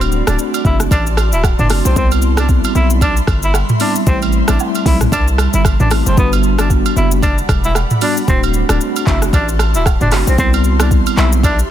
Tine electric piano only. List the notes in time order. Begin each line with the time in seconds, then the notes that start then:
Already playing: A3 C4 D4 F#4
0.27 A3 C4 F#4
0.65 A3 C4 D4 F#4
1.70 A3 C4 D4 F#4
1.96 G3 B3 C4 E4
2.37 G3 B3 C4
2.75 G3 B3 C4 E4
3.80 G3 B3 C4 E4
4.06 G3 A3 C4 E4
4.48 G3 A3 C4 E4
4.85 G3 A3 C4 E4
5.91 G3 A3 C4 E4
6.17 G3 B3 D4 F#4
6.59 G3 B3 D4 F#4
6.96 G3 B3 D4 F#4
8.01 G3 B3 D4 F#4
8.27 A3 C4 D4 F#4
8.69 A3 C4 D4 F#4
9.06 A3 C4 D4 F#4
10.12 A3 C4 D4 F#4
10.38 G3 B3 C4 E4
10.79 G3 B3 C4 E4
11.17 G3 B3 C4 E4